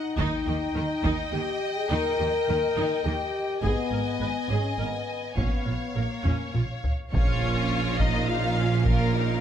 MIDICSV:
0, 0, Header, 1, 11, 480
1, 0, Start_track
1, 0, Tempo, 573614
1, 157, Time_signature, 3, 2, 24, 8
1, 3518, Tempo, 581395
1, 7812, End_track
2, 0, Start_track
2, 0, Title_t, "Violin section"
2, 0, Program_c, 0, 48
2, 0, Note_on_c, 0, 78, 43
2, 125, Note_off_c, 0, 78, 0
2, 151, Note_on_c, 0, 79, 52
2, 3000, Note_off_c, 0, 79, 0
2, 3033, Note_on_c, 0, 80, 48
2, 4454, Note_off_c, 0, 80, 0
2, 4478, Note_on_c, 0, 77, 36
2, 5767, Note_off_c, 0, 77, 0
2, 5924, Note_on_c, 0, 73, 59
2, 6612, Note_off_c, 0, 73, 0
2, 6633, Note_on_c, 0, 75, 70
2, 6871, Note_on_c, 0, 77, 75
2, 6880, Note_off_c, 0, 75, 0
2, 7355, Note_off_c, 0, 77, 0
2, 7358, Note_on_c, 0, 70, 67
2, 7812, Note_off_c, 0, 70, 0
2, 7812, End_track
3, 0, Start_track
3, 0, Title_t, "String section"
3, 0, Program_c, 1, 48
3, 5923, Note_on_c, 1, 65, 52
3, 5923, Note_on_c, 1, 70, 51
3, 5924, Note_on_c, 1, 77, 50
3, 5925, Note_on_c, 1, 58, 49
3, 7812, Note_off_c, 1, 58, 0
3, 7812, Note_off_c, 1, 65, 0
3, 7812, Note_off_c, 1, 70, 0
3, 7812, Note_off_c, 1, 77, 0
3, 7812, End_track
4, 0, Start_track
4, 0, Title_t, "Viola section"
4, 0, Program_c, 2, 48
4, 148, Note_on_c, 2, 63, 69
4, 374, Note_off_c, 2, 63, 0
4, 396, Note_on_c, 2, 67, 41
4, 463, Note_off_c, 2, 67, 0
4, 628, Note_on_c, 2, 70, 51
4, 695, Note_off_c, 2, 70, 0
4, 864, Note_on_c, 2, 63, 57
4, 1090, Note_off_c, 2, 63, 0
4, 1107, Note_on_c, 2, 67, 52
4, 1174, Note_off_c, 2, 67, 0
4, 1588, Note_on_c, 2, 63, 62
4, 1814, Note_off_c, 2, 63, 0
4, 1831, Note_on_c, 2, 67, 43
4, 1898, Note_off_c, 2, 67, 0
4, 2079, Note_on_c, 2, 70, 42
4, 2146, Note_off_c, 2, 70, 0
4, 2313, Note_on_c, 2, 63, 57
4, 2537, Note_off_c, 2, 63, 0
4, 2549, Note_on_c, 2, 67, 38
4, 2616, Note_off_c, 2, 67, 0
4, 3044, Note_on_c, 2, 68, 58
4, 3264, Note_off_c, 2, 68, 0
4, 3281, Note_on_c, 2, 70, 37
4, 3348, Note_off_c, 2, 70, 0
4, 3519, Note_on_c, 2, 71, 38
4, 3586, Note_off_c, 2, 71, 0
4, 3758, Note_on_c, 2, 68, 45
4, 3983, Note_off_c, 2, 68, 0
4, 4003, Note_on_c, 2, 70, 37
4, 4069, Note_off_c, 2, 70, 0
4, 4487, Note_on_c, 2, 61, 40
4, 4712, Note_off_c, 2, 61, 0
4, 4721, Note_on_c, 2, 65, 30
4, 4787, Note_off_c, 2, 65, 0
4, 4959, Note_on_c, 2, 70, 31
4, 5025, Note_off_c, 2, 70, 0
4, 5203, Note_on_c, 2, 61, 44
4, 5432, Note_off_c, 2, 61, 0
4, 5448, Note_on_c, 2, 65, 34
4, 5514, Note_off_c, 2, 65, 0
4, 5932, Note_on_c, 2, 61, 59
4, 6616, Note_off_c, 2, 61, 0
4, 6644, Note_on_c, 2, 63, 58
4, 6884, Note_on_c, 2, 65, 58
4, 6886, Note_off_c, 2, 63, 0
4, 7356, Note_on_c, 2, 58, 59
4, 7361, Note_off_c, 2, 65, 0
4, 7812, Note_off_c, 2, 58, 0
4, 7812, End_track
5, 0, Start_track
5, 0, Title_t, "Violin section"
5, 0, Program_c, 3, 48
5, 0, Note_on_c, 3, 75, 46
5, 128, Note_off_c, 3, 75, 0
5, 159, Note_on_c, 3, 75, 52
5, 3003, Note_off_c, 3, 75, 0
5, 3030, Note_on_c, 3, 75, 49
5, 4453, Note_off_c, 3, 75, 0
5, 4487, Note_on_c, 3, 73, 37
5, 5745, Note_off_c, 3, 73, 0
5, 5933, Note_on_c, 3, 65, 60
5, 6855, Note_off_c, 3, 65, 0
5, 6904, Note_on_c, 3, 63, 51
5, 7134, Note_off_c, 3, 63, 0
5, 7136, Note_on_c, 3, 61, 50
5, 7368, Note_off_c, 3, 61, 0
5, 7368, Note_on_c, 3, 65, 59
5, 7596, Note_on_c, 3, 63, 54
5, 7598, Note_off_c, 3, 65, 0
5, 7812, Note_off_c, 3, 63, 0
5, 7812, End_track
6, 0, Start_track
6, 0, Title_t, "French horn section"
6, 0, Program_c, 4, 60
6, 0, Note_on_c, 4, 63, 75
6, 148, Note_off_c, 4, 63, 0
6, 158, Note_on_c, 4, 63, 77
6, 973, Note_off_c, 4, 63, 0
6, 1115, Note_on_c, 4, 67, 65
6, 1467, Note_off_c, 4, 67, 0
6, 1473, Note_on_c, 4, 68, 70
6, 1586, Note_on_c, 4, 70, 85
6, 1593, Note_off_c, 4, 68, 0
6, 2547, Note_on_c, 4, 67, 67
6, 2551, Note_off_c, 4, 70, 0
6, 3030, Note_on_c, 4, 59, 71
6, 3032, Note_off_c, 4, 67, 0
6, 3741, Note_off_c, 4, 59, 0
6, 3758, Note_on_c, 4, 61, 58
6, 3981, Note_on_c, 4, 59, 46
6, 4000, Note_off_c, 4, 61, 0
6, 4458, Note_off_c, 4, 59, 0
6, 4467, Note_on_c, 4, 59, 60
6, 4951, Note_off_c, 4, 59, 0
6, 4966, Note_on_c, 4, 58, 44
6, 5452, Note_off_c, 4, 58, 0
6, 5949, Note_on_c, 4, 61, 52
6, 5954, Note_on_c, 4, 65, 51
6, 7812, Note_off_c, 4, 61, 0
6, 7812, Note_off_c, 4, 65, 0
6, 7812, End_track
7, 0, Start_track
7, 0, Title_t, "Cello section"
7, 0, Program_c, 5, 48
7, 154, Note_on_c, 5, 51, 67
7, 221, Note_off_c, 5, 51, 0
7, 395, Note_on_c, 5, 51, 45
7, 462, Note_off_c, 5, 51, 0
7, 629, Note_on_c, 5, 51, 48
7, 696, Note_off_c, 5, 51, 0
7, 866, Note_on_c, 5, 51, 61
7, 933, Note_off_c, 5, 51, 0
7, 1105, Note_on_c, 5, 51, 43
7, 1172, Note_off_c, 5, 51, 0
7, 1600, Note_on_c, 5, 51, 58
7, 1666, Note_off_c, 5, 51, 0
7, 1840, Note_on_c, 5, 51, 43
7, 1907, Note_off_c, 5, 51, 0
7, 2079, Note_on_c, 5, 51, 46
7, 2146, Note_off_c, 5, 51, 0
7, 2317, Note_on_c, 5, 51, 53
7, 2383, Note_off_c, 5, 51, 0
7, 2559, Note_on_c, 5, 51, 41
7, 2626, Note_off_c, 5, 51, 0
7, 3027, Note_on_c, 5, 44, 57
7, 3094, Note_off_c, 5, 44, 0
7, 3271, Note_on_c, 5, 44, 37
7, 3338, Note_off_c, 5, 44, 0
7, 3514, Note_on_c, 5, 44, 41
7, 3581, Note_off_c, 5, 44, 0
7, 3754, Note_on_c, 5, 44, 46
7, 3820, Note_off_c, 5, 44, 0
7, 4004, Note_on_c, 5, 44, 32
7, 4070, Note_off_c, 5, 44, 0
7, 4476, Note_on_c, 5, 46, 42
7, 4542, Note_off_c, 5, 46, 0
7, 4713, Note_on_c, 5, 46, 31
7, 4779, Note_off_c, 5, 46, 0
7, 4965, Note_on_c, 5, 46, 30
7, 5031, Note_off_c, 5, 46, 0
7, 5207, Note_on_c, 5, 46, 42
7, 5273, Note_off_c, 5, 46, 0
7, 5444, Note_on_c, 5, 46, 28
7, 5510, Note_off_c, 5, 46, 0
7, 5925, Note_on_c, 5, 46, 54
7, 7812, Note_off_c, 5, 46, 0
7, 7812, End_track
8, 0, Start_track
8, 0, Title_t, "Double bass section"
8, 0, Program_c, 6, 48
8, 147, Note_on_c, 6, 39, 61
8, 214, Note_off_c, 6, 39, 0
8, 388, Note_on_c, 6, 39, 46
8, 455, Note_off_c, 6, 39, 0
8, 624, Note_on_c, 6, 39, 48
8, 691, Note_off_c, 6, 39, 0
8, 865, Note_on_c, 6, 39, 59
8, 932, Note_off_c, 6, 39, 0
8, 1111, Note_on_c, 6, 39, 46
8, 1178, Note_off_c, 6, 39, 0
8, 1590, Note_on_c, 6, 39, 61
8, 1657, Note_off_c, 6, 39, 0
8, 1834, Note_on_c, 6, 39, 44
8, 1900, Note_off_c, 6, 39, 0
8, 2077, Note_on_c, 6, 39, 49
8, 2144, Note_off_c, 6, 39, 0
8, 2315, Note_on_c, 6, 39, 54
8, 2382, Note_off_c, 6, 39, 0
8, 2555, Note_on_c, 6, 39, 42
8, 2622, Note_off_c, 6, 39, 0
8, 3035, Note_on_c, 6, 32, 58
8, 3102, Note_off_c, 6, 32, 0
8, 3273, Note_on_c, 6, 32, 36
8, 3340, Note_off_c, 6, 32, 0
8, 3518, Note_on_c, 6, 32, 40
8, 3584, Note_off_c, 6, 32, 0
8, 3757, Note_on_c, 6, 32, 40
8, 3823, Note_off_c, 6, 32, 0
8, 3998, Note_on_c, 6, 32, 36
8, 4064, Note_off_c, 6, 32, 0
8, 4476, Note_on_c, 6, 34, 45
8, 4542, Note_off_c, 6, 34, 0
8, 4721, Note_on_c, 6, 34, 31
8, 4787, Note_off_c, 6, 34, 0
8, 4961, Note_on_c, 6, 34, 34
8, 5027, Note_off_c, 6, 34, 0
8, 5198, Note_on_c, 6, 34, 36
8, 5264, Note_off_c, 6, 34, 0
8, 5447, Note_on_c, 6, 34, 31
8, 5513, Note_off_c, 6, 34, 0
8, 5925, Note_on_c, 6, 34, 50
8, 7812, Note_off_c, 6, 34, 0
8, 7812, End_track
9, 0, Start_track
9, 0, Title_t, "Tuba"
9, 0, Program_c, 7, 58
9, 5927, Note_on_c, 7, 34, 53
9, 7812, Note_off_c, 7, 34, 0
9, 7812, End_track
10, 0, Start_track
10, 0, Title_t, "Impact"
10, 0, Program_c, 8, 103
10, 5929, Note_on_c, 8, 60, 54
10, 7360, Note_off_c, 8, 60, 0
10, 7812, End_track
11, 0, Start_track
11, 0, Title_t, "Taiko and cinematic ensemble drums"
11, 166, Note_on_c, 9, 41, 57
11, 249, Note_off_c, 9, 41, 0
11, 874, Note_on_c, 9, 41, 37
11, 957, Note_off_c, 9, 41, 0
11, 3038, Note_on_c, 9, 41, 58
11, 3121, Note_off_c, 9, 41, 0
11, 4485, Note_on_c, 9, 41, 75
11, 4568, Note_off_c, 9, 41, 0
11, 5209, Note_on_c, 9, 45, 62
11, 5291, Note_off_c, 9, 45, 0
11, 5452, Note_on_c, 9, 47, 59
11, 5535, Note_off_c, 9, 47, 0
11, 5693, Note_on_c, 9, 43, 66
11, 5776, Note_off_c, 9, 43, 0
11, 5940, Note_on_c, 9, 41, 87
11, 6022, Note_off_c, 9, 41, 0
11, 6649, Note_on_c, 9, 41, 73
11, 6732, Note_off_c, 9, 41, 0
11, 7355, Note_on_c, 9, 41, 90
11, 7438, Note_off_c, 9, 41, 0
11, 7812, End_track
0, 0, End_of_file